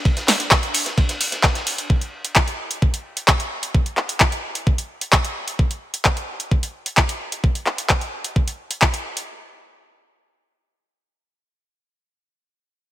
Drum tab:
RD |x-x-x-x-x-x-x-x-|----------------|----------------|----------------|
HH |-xox-xox-xox-xox|-x-x-x-x-x-x-x-x|-x-x-x-x-x-x-x-x|-x-x-x-x-x-x-x-x|
CP |--x-x-------x---|----x-------x---|--x-x-------x---|----x-------x---|
SD |-oooo--ooo-ooo--|----------------|----------------|----------------|
BD |o---o---o---o---|o---o---o---o---|o---o---o---o---|o---o---o---o---|

RD |----------------|----------------|----------------|
HH |-x-x-x-x-x-x-x-x|----------------|----------------|
CP |--x-x-------x---|----------------|----------------|
SD |----------------|----------------|----------------|
BD |o---o---o---o---|----------------|----------------|